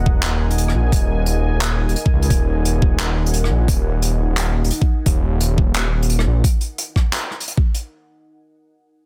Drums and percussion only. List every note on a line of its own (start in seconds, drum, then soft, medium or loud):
0.06 kick loud
0.23 clap loud
0.23 closed hi-hat medium
0.51 closed hi-hat medium
0.58 closed hi-hat medium
0.68 cross-stick medium
0.92 kick loud
0.92 closed hi-hat medium
1.26 closed hi-hat medium
1.61 clap loud
1.61 closed hi-hat medium
1.89 closed hi-hat soft
1.96 closed hi-hat medium
2.06 kick loud
2.22 closed hi-hat medium
2.30 kick loud
2.30 closed hi-hat medium
2.65 closed hi-hat medium
2.82 kick loud
2.99 clap loud
2.99 closed hi-hat medium
3.26 closed hi-hat medium
3.34 closed hi-hat medium
3.44 cross-stick medium
3.68 kick loud
3.68 closed hi-hat loud
4.02 closed hi-hat medium
4.37 clap loud
4.37 closed hi-hat medium
4.64 closed hi-hat medium
4.71 closed hi-hat medium
4.82 kick loud
5.06 kick loud
5.06 closed hi-hat medium
5.41 closed hi-hat medium
5.58 kick loud
5.74 clap loud
5.74 closed hi-hat medium
6.03 closed hi-hat soft
6.10 closed hi-hat medium
6.19 cross-stick medium
6.44 kick loud
6.44 closed hi-hat medium
6.61 closed hi-hat medium
6.78 closed hi-hat medium
6.96 kick medium
6.96 cross-stick soft
7.13 clap loud
7.13 closed hi-hat medium
7.31 cross-stick soft
7.40 closed hi-hat medium
7.48 closed hi-hat medium
7.57 kick loud
7.74 closed hi-hat medium